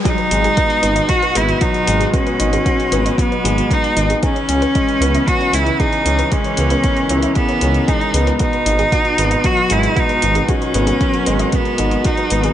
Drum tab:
HH |xxxxxxxxxxxxxxxx|xxxxxxxxxxxxxxxx|xxxxxxxxxxxxxxxx|xxxxxxxxxxxxxxxx|
BD |o---o---o---o---|o---o---o---o---|o---o---o---o---|o---o---o---o---|

HH |xxxxxxxxxxxxxxxx|xxxxxxxxxxxxxxxx|
BD |o---o---o---o---|o---o---o---o---|